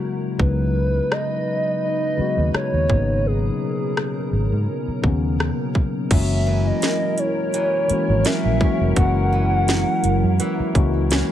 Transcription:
Already playing: tine electric piano C#3 F#3 G#3 A#3 F#4, ambient pad F#3 E4 A#4
0.38 fingered electric bass C#2, tine electric piano C#3 E3 G#3 B3, ambient pad D#4 B4, soft synth lead B4, kick
0.43 tine electric piano F#3 D#4
1.11 soft synth lead D#5, cross-stick
1.83 soft synth lead D#5
2.17 tine electric piano C#3 F#3 G#3 B3, muted fingered electric bass stroke
2.21 tine electric piano F#4
2.38 fingered electric bass D#2
2.54 soft synth lead C#5, muted fingered electric bass stroke, cross-stick
2.74 fingered electric bass D#2
2.88 fingered electric bass G#1, ambient pad B2 C#4 A#4, tine electric piano C#3 F#3 A#3 B3, kick
2.93 tine electric piano D#4
3.26 soft synth lead G#4
3.97 cross-stick
4.33 fingered electric bass G#1
4.52 fingered electric bass G#2
4.88 muted fingered electric bass stroke
5.02 fingered electric bass D#2, tine electric piano C#3 F#3 A#3 B3, kick
5.07 tine electric piano C#4
5.40 cross-stick
5.75 kick
6.09 fingered electric bass F#1, steel-string acoustic guitar F#2, tine electric piano E3 G#3 A#3 C#4, ambient pad F#3 E4 A#4, soft synth lead E5, kick, closed hi-hat, crash
6.14 tine electric piano F4
6.21 tine electric piano F#4
6.47 steel-string acoustic guitar E3
6.67 soft synth lead D#5
6.82 snare, closed hi-hat
7.18 soft synth lead C#5, closed hi-hat
7.54 steel-string acoustic guitar E3, closed hi-hat
7.88 tine electric piano E3 G#3 A#3 C#4, muted fingered electric bass stroke, closed hi-hat
7.93 tine electric piano F#4
8.10 fingered electric bass G#1
8.25 steel-string acoustic guitar E3 A#3 C#4, soft synth lead E5, snare, closed hi-hat
8.45 fingered electric bass A#1
8.59 tine electric piano E3 G#3 A#3 C#4, steel-string acoustic guitar C#4, kick
8.64 tine electric piano F#4
8.81 fingered electric bass F1
8.95 fingered electric bass F#1, steel-string acoustic guitar F#2, tine electric piano E3 G#3 A#3 C#4, soft synth lead F#5, kick, closed hi-hat
9.00 tine electric piano F#4
9.33 steel-string acoustic guitar E3
9.68 snare, closed hi-hat
10.04 fingered electric bass F#1, closed hi-hat
10.24 fingered electric bass F#2
10.40 steel-string acoustic guitar E3, closed hi-hat
10.60 muted fingered electric bass stroke
10.74 fingered electric bass C#2, tine electric piano E3 G#3 A#3 C#4, kick, closed hi-hat
10.78 tine electric piano F#4
11.11 steel-string acoustic guitar E3 A#3 C#4, snare, closed hi-hat

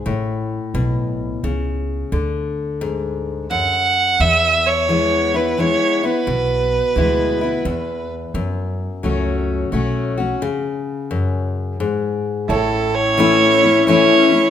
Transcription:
0.06 upright bass A1, steel-string acoustic guitar A2
0.74 upright bass B1, steel-string acoustic guitar B2
1.43 upright bass C#2, steel-string acoustic guitar C#3
2.12 upright bass D2, steel-string acoustic guitar D3
2.81 steel-string acoustic guitar G#2
3.50 steel-string acoustic guitar F#2, fiddle F#5
4.20 upright bass E2, steel-string acoustic guitar E2, fiddle E5
4.66 fiddle C#5
4.89 steel-string acoustic guitar E3 G#3 B3 E4
5.34 steel-string acoustic guitar B3 E4, fiddle B4
5.58 steel-string acoustic guitar E3 G#3 B3 E4, fiddle C#5
6.03 steel-string acoustic guitar B3 E4, fiddle B4
6.27 upright bass B1, steel-string acoustic guitar B2
6.96 upright bass D2, steel-string acoustic guitar E3 G#3 B3 E4
7.41 steel-string acoustic guitar B3 E4
7.65 upright bass E2, steel-string acoustic guitar E2
8.34 upright bass F#2, steel-string acoustic guitar F#2
9.03 upright bass C#2, steel-string acoustic guitar F#3 A3 C#4 F#4
9.72 upright bass B1, steel-string acoustic guitar F#3 A3 C#4 F#4
10.18 steel-string acoustic guitar C#4 F#4
10.42 steel-string acoustic guitar C#3
11.11 steel-string acoustic guitar F#2
11.80 steel-string acoustic guitar G#2
12.48 upright bass A1, steel-string acoustic guitar A2, string section A3 C#4 E4, grand piano E4 A4 C#5, fiddle A4
12.94 fiddle C#5
13.18 steel-string acoustic guitar E3 A3 C#4 E4
13.63 steel-string acoustic guitar C#4 E4
13.87 steel-string acoustic guitar E3 A3 C#4 E4, fiddle C#5
14.32 steel-string acoustic guitar C#4 E4

